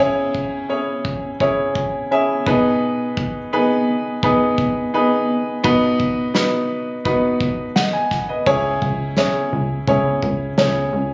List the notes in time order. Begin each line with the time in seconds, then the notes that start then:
0.00 C#3 C#4 E4 G#4 C#5
0.35 kick
0.69 C#4 E4 G#4 C#5
1.05 kick
1.40 C#4 E4 G#4 C#5, kick
1.75 kick
2.11 C#4 E4 G#4 E5
2.47 B2 B3 D#4 G#4 B4, kick
3.17 kick
3.53 B3 D#4 G#4 B4
4.23 B3 D#4 G#4 B4, kick
4.58 kick
4.94 B3 D#4 G#4 B4
5.64 B2 B3 D#4 F#4 B4, kick
6.00 kick
6.34 B3 D#4 F#4 B4, snare
7.05 B3 D#4 F#4 B4, kick
7.40 kick
7.76 D#5 F#5, snare
7.93 G#5
8.11 kick, snare
8.29 B4 D#5
8.46 C#2 C#3 C#4 E4 G#4 C#5, kick
8.82 C#2, kick
9.17 C#4 E4 G#4 C#5, snare
9.52 C#2
9.87 C#2 C#4 E4 G#4 C#5, kick
10.22 C#2, kick
10.58 C#2 C#4 E4 G#4 C#5, snare
10.93 C#2